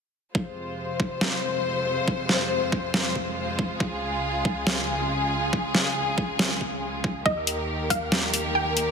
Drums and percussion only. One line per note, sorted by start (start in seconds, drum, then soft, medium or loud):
0.35 kick loud
1.00 kick loud
1.21 snare loud
2.08 kick loud
2.29 snare medium
2.72 kick loud
2.94 snare loud
3.16 kick medium
3.59 kick loud
3.80 kick loud
4.45 kick loud
4.67 snare loud
5.53 kick loud
5.75 snare medium
6.18 kick loud
6.39 snare loud
6.61 kick medium
7.04 kick loud
7.26 kick loud
7.47 closed hi-hat medium
7.90 kick loud
7.90 closed hi-hat medium
8.12 snare loud
8.34 closed hi-hat medium
8.77 closed hi-hat medium